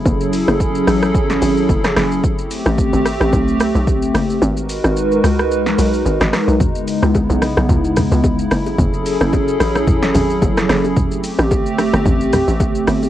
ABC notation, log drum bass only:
X:1
M:4/4
L:1/16
Q:"Swing 16ths" 1/4=110
K:F#dor
V:1 name="Log drum bass" clef=bass
F,,,3 F,,,3 A,,,4 G,,,2 F,,,2 F,,,2 | z3 A,,,2 G,,,2 A,,, B,,,3 B,,,3 F,,,2 | G,,,3 G,,,3 C,,4 B,,,2 G,,, G,,, z B,,, | z3 C,,2 B,,,2 B,,, C,,3 C,,3 F,,,2 |
F,,,3 F,,,3 A,,,4 G,,,2 F,,,2 F,,,2 | z3 A,,,2 =G,,,2 G,,, A,,,3 A,,,3 G,,,2 |]